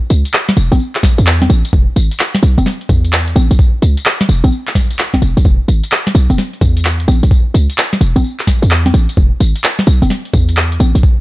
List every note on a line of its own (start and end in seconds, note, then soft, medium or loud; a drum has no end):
0.10 0.23 C#2 medium
0.10 closed hi-hat loud
0.10 tambourine medium
0.25 closed hi-hat medium
0.25 tambourine soft
0.34 clap loud
0.34 tambourine soft
0.49 snare medium
0.49 closed hi-hat soft
0.57 0.70 E1 medium
0.57 closed hi-hat medium
0.57 tambourine medium
0.72 0.79 A1 loud
0.72 closed hi-hat medium
0.72 tambourine soft
0.72 high conga medium
0.80 tambourine soft
0.95 clap medium
0.95 closed hi-hat soft
1.03 kick loud
1.03 snare medium
1.03 closed hi-hat loud
1.03 tambourine medium
1.18 1.48 E2 medium
1.18 closed hi-hat medium
1.18 tambourine soft
1.27 clap loud
1.27 tambourine soft
1.42 snare medium
1.42 closed hi-hat soft
1.42 high conga medium
1.50 1.63 A1 loud
1.50 closed hi-hat loud
1.50 tambourine medium
1.65 closed hi-hat medium
1.65 tambourine soft
1.73 1.86 E1 loud
1.73 kick loud
1.73 tambourine soft
1.96 2.09 G#1 medium
1.96 closed hi-hat loud
1.96 tambourine medium
2.11 closed hi-hat medium
2.11 tambourine soft
2.19 clap loud
2.19 tambourine soft
2.35 snare medium
2.35 closed hi-hat soft
2.43 2.56 B1 loud
2.43 closed hi-hat medium
2.43 tambourine medium
2.58 2.65 E1 loud
2.58 closed hi-hat medium
2.58 tambourine soft
2.58 high conga medium
2.66 snare medium
2.66 tambourine soft
2.81 closed hi-hat soft
2.89 3.34 E2 medium
2.89 kick loud
2.89 closed hi-hat loud
2.89 tambourine medium
3.04 closed hi-hat medium
3.04 tambourine soft
3.13 clap loud
3.13 tambourine soft
3.28 closed hi-hat soft
3.36 3.49 A1 loud
3.36 closed hi-hat medium
3.36 tambourine medium
3.36 high conga medium
3.51 3.58 A1 medium
3.51 closed hi-hat medium
3.51 tambourine soft
3.59 kick loud
3.59 tambourine soft
3.82 3.95 C#2 medium
3.82 closed hi-hat loud
3.82 tambourine medium
3.97 closed hi-hat medium
3.97 tambourine soft
4.06 clap loud
4.21 snare medium
4.21 closed hi-hat soft
4.29 4.42 E1 medium
4.29 closed hi-hat medium
4.29 tambourine medium
4.44 4.51 A1 loud
4.44 closed hi-hat medium
4.44 tambourine soft
4.44 high conga medium
4.52 tambourine soft
4.67 clap medium
4.67 closed hi-hat soft
4.75 kick loud
4.75 snare medium
4.75 closed hi-hat loud
4.75 tambourine medium
4.91 closed hi-hat medium
4.91 tambourine soft
4.99 clap loud
5.14 kick medium
5.14 snare medium
5.14 closed hi-hat soft
5.14 high conga medium
5.22 5.35 E1 medium
5.22 closed hi-hat medium
5.22 tambourine medium
5.37 5.44 A1 loud
5.37 closed hi-hat medium
5.37 tambourine soft
5.45 5.58 E1 loud
5.45 kick loud
5.45 tambourine soft
5.68 5.81 G#1 medium
5.68 closed hi-hat loud
5.68 tambourine medium
5.84 closed hi-hat medium
5.84 tambourine soft
5.92 clap loud
5.92 tambourine soft
6.07 snare medium
6.07 closed hi-hat soft
6.15 6.28 B1 medium
6.15 closed hi-hat medium
6.15 tambourine medium
6.30 6.37 E1 loud
6.30 closed hi-hat medium
6.30 tambourine soft
6.30 high conga medium
6.38 snare medium
6.38 tambourine soft
6.53 closed hi-hat soft
6.61 7.06 E2 medium
6.61 kick loud
6.61 closed hi-hat loud
6.61 tambourine medium
6.77 closed hi-hat medium
6.77 tambourine soft
6.85 clap loud
6.85 tambourine soft
7.00 closed hi-hat medium
7.08 7.21 A1 loud
7.08 closed hi-hat medium
7.08 tambourine medium
7.08 high conga medium
7.23 7.30 A1 medium
7.23 closed hi-hat medium
7.23 tambourine soft
7.31 kick loud
7.31 tambourine soft
7.54 7.68 C#2 medium
7.54 closed hi-hat loud
7.54 tambourine medium
7.70 closed hi-hat medium
7.70 tambourine soft
7.78 clap loud
7.78 tambourine soft
7.93 snare medium
7.93 closed hi-hat soft
8.01 8.14 E1 medium
8.01 closed hi-hat medium
8.01 tambourine medium
8.16 8.23 A1 loud
8.16 closed hi-hat medium
8.16 tambourine soft
8.16 high conga medium
8.24 tambourine soft
8.39 clap medium
8.39 closed hi-hat soft
8.47 kick loud
8.47 snare medium
8.47 closed hi-hat loud
8.47 tambourine medium
8.62 8.92 E2 medium
8.62 closed hi-hat medium
8.62 tambourine soft
8.71 clap loud
8.71 tambourine soft
8.86 snare medium
8.86 closed hi-hat medium
8.86 high conga medium
8.94 9.07 A1 loud
8.94 closed hi-hat loud
8.94 tambourine medium
9.09 closed hi-hat medium
9.09 tambourine soft
9.17 9.30 E1 loud
9.17 kick loud
9.17 tambourine soft
9.40 9.54 G#1 medium
9.40 closed hi-hat loud
9.40 tambourine medium
9.56 closed hi-hat medium
9.56 tambourine soft
9.64 clap loud
9.64 tambourine soft
9.79 snare medium
9.79 closed hi-hat soft
9.87 10.00 B1 loud
9.87 closed hi-hat medium
9.87 tambourine medium
10.02 10.09 E1 loud
10.02 closed hi-hat medium
10.02 tambourine soft
10.02 high conga medium
10.10 snare medium
10.10 tambourine soft
10.25 closed hi-hat soft
10.34 10.78 E2 medium
10.34 kick loud
10.34 closed hi-hat loud
10.34 tambourine medium
10.49 closed hi-hat medium
10.49 tambourine soft
10.57 clap loud
10.57 tambourine soft
10.72 closed hi-hat medium
10.80 10.93 A1 loud
10.80 closed hi-hat loud
10.80 tambourine medium
10.80 high conga medium
10.95 11.02 A1 medium
10.95 closed hi-hat medium
10.95 tambourine soft
11.03 kick loud
11.03 tambourine soft